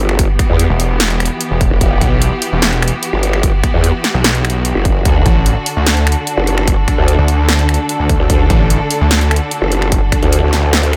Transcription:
Already playing: G1 E3 B3 F#4 G4
0.09 finger snap
0.19 kick, closed hi-hat
0.39 finger snap, kick, closed hi-hat
0.50 E2
0.59 closed hi-hat
0.70 E1
0.80 open hi-hat
1.00 snare, closed hi-hat
1.10 closed hi-hat
1.20 finger snap, closed hi-hat
1.25 closed hi-hat
1.41 closed hi-hat
1.51 E1
1.61 kick, closed hi-hat
1.71 E1
1.81 E1, kick, closed hi-hat
2.01 B1, kick, closed hi-hat
2.22 closed hi-hat
2.42 open hi-hat
2.52 E1
2.62 snare, closed hi-hat
2.73 closed hi-hat
2.82 finger snap, closed hi-hat
2.88 closed hi-hat
3.03 closed hi-hat
3.13 G1
3.23 closed hi-hat
3.33 finger snap
3.43 kick, closed hi-hat
3.64 finger snap, kick, closed hi-hat
3.74 E2
3.84 closed hi-hat
4.04 snare, open hi-hat
4.14 B1
4.24 snare, closed hi-hat
4.35 closed hi-hat
4.45 finger snap, closed hi-hat
4.50 closed hi-hat
4.65 closed hi-hat
4.75 F#1
4.85 kick, closed hi-hat
5.05 D2 D3 D4 A4, kick, closed hi-hat
5.20 A4
5.26 A1, kick, closed hi-hat
5.46 closed hi-hat
5.66 open hi-hat
5.77 D2
5.87 snare, closed hi-hat
5.97 closed hi-hat
6.07 finger snap, closed hi-hat
6.12 closed hi-hat
6.27 closed hi-hat
6.37 F#1
6.47 closed hi-hat
6.58 finger snap
6.68 kick, closed hi-hat
6.88 finger snap, kick, closed hi-hat
6.98 D2
7.08 closed hi-hat
7.18 D2
7.28 open hi-hat
7.49 snare, closed hi-hat
7.59 closed hi-hat
7.69 finger snap, closed hi-hat
7.74 closed hi-hat
7.89 closed hi-hat
8.00 D2
8.09 kick, closed hi-hat
8.20 D2
8.30 D2, kick, closed hi-hat
8.50 A1, kick, closed hi-hat
8.70 closed hi-hat
8.91 open hi-hat
9.01 D2
9.11 snare, closed hi-hat
9.21 closed hi-hat
9.31 finger snap, closed hi-hat
9.36 closed hi-hat
9.51 closed hi-hat
9.62 F#1
9.72 closed hi-hat
9.82 finger snap
9.92 kick, closed hi-hat
10.12 finger snap, kick, closed hi-hat
10.22 D2, closed hi-hat
10.33 closed hi-hat
10.43 D2
10.53 snare, open hi-hat
10.73 snare, closed hi-hat, reverse cymbal
10.83 closed hi-hat
10.93 finger snap, closed hi-hat

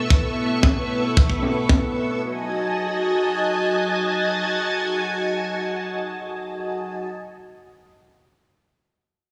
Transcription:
Already playing: B3 A4 E5 C#6
0.10 kick, closed hi-hat
0.25 closed hi-hat
0.36 open hi-hat
0.51 closed hi-hat
0.63 kick, snare
0.77 closed hi-hat
0.91 open hi-hat
1.05 closed hi-hat
1.17 kick, closed hi-hat
1.30 kick, open hi-hat
1.43 snare, open hi-hat
1.58 closed hi-hat
1.69 kick, snare
1.83 closed hi-hat
1.96 open hi-hat
2.10 closed hi-hat
2.22 F#4 D#5 G#5 A5

